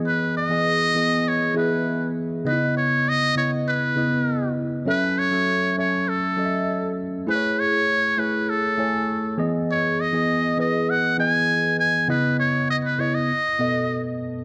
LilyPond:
<<
  \new Staff \with { instrumentName = "Muted trumpet" } { \time 4/4 \key e \major \tempo 4 = 100 b'8 dis''4. cis''8 b'4 r8 | b'8 cis''8 dis''8 cis''8 b'4. r8 | b'8 cis''4 cis''8 a'4. r8 | b'8 cis''4 b'8 a'4. r8 |
cis''8 dis''4 dis''8 fis''8 gis''4 gis''8 | b'8 cis''8 dis''16 b'16 cis''16 dis''4. r8. | }
  \new Staff \with { instrumentName = "Tine electric piano" } { \time 4/4 \key e \major <e b gis' dis''>8 r16 <e b gis' dis''>8 r16 <e b gis' dis''>8. r16 <e b gis' e''>4 r8 | <cis b dis' e' dis''>4 r8 <cis b e' dis''>8. r16 <cis b e' dis''>4 r8 | <fis cis' a' e''>8 r16 <fis cis' a' e''>8 r16 <fis cis' a' e''>8. r16 <fis cis' a' dis'' e''>4 r8 | <a e' gis' c'' cis''>4 r8 <a e' gis' cis''>8. r16 <a e' cis'' gis''>4 <e b gis' dis''>8~ |
<e b gis' dis''>8 r16 <e b gis' dis''>8 r16 <e b gis' b'>8. r16 <e b gis' dis''>4 r8 | <cis b e' dis''>4 r8 <cis b e' dis''>8 r8 <b, b a' dis''>4 r8 | }
>>